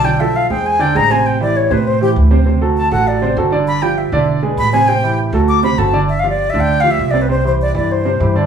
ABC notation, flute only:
X:1
M:4/4
L:1/16
Q:1/4=199
K:Gmix
V:1 name="Flute"
g2 e2 f2 g2 ^g2 =g2 _b2 ^g2 | g2 d2 ^c2 B2 =c2 G2 z4 | z4 a2 ^f2 d4 z4 | b2 g2 e4 z4 b2 ^g2 |
g4 z4 d'2 b2 a3 z | (3e2 f2 d2- (3d2 e2 g2- (3g2 f2 e2- (3e2 d2 B2 | c2 c2 d2 d2 c6 z2 |]